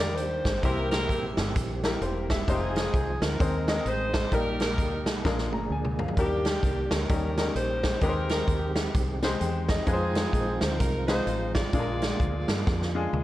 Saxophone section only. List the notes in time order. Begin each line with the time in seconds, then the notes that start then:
Already playing: D4 G4 A#4
0.16 G4 C5
0.63 E4 G4 A#4
0.91 E4 G4 A#4
2.49 C4 D#4 G#4
3.22 D#4 A#4
3.87 D#4 G#4 C5
4.34 D#4 G4 A#4
4.62 D#4 G4 A#4
6.18 A#3 D4 G4
6.92 C#4 G4 A#4
7.56 G4 C5
8.03 G4 A#4
8.30 G4 A#4
9.87 C4 D#4 G#4
10.61 C5
10.79 D#4 A#4
11.07 D#4 G#4 C5
11.54 F4 G#4 D5